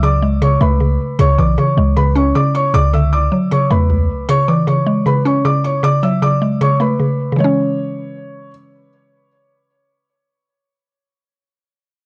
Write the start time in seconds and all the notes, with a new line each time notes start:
Already playing: C#2 F#3
0.03 C#3 D5 D6
0.22 G#3
0.42 C#3 C#5 C#6
0.61 C#2 A3 B4 B5
0.80 C#3
1.19 C#2 C#3 C#5 C#6
1.38 B1 E3 D5 D6
1.58 C#3 C#5 C#6
1.77 C#2 G#3
1.97 C#3 B4 B5
2.15 C#4 C#5 C#6
2.35 C#3 D5 D6
2.55 C#5 C#6
2.74 C#2 C#3 D5 D6
2.93 D3 E5 E6
3.13 D5 D6
3.32 F#3
3.51 C#3 C#5 C#6
3.71 E2 A3 B4 B5
3.90 C#2
4.29 C#3 C#5 C#6
4.48 E3 D5 D6
4.67 C#3 C#5 C#6
4.87 G#3
5.06 C#3 B4 B5
5.25 C#4 C#5 C#6
5.45 C#3 D5 D6
5.64 C#5 C#6
5.83 C#3 D5 D6
6.03 F#3 E5 E6
6.22 C#3 D5 D6
6.42 G#3
6.61 C#3 C#5 C#6
6.80 A3 B4 B5
7.00 C#3
7.32 C#3
7.36 E3 G#3 C#5
7.44 C#4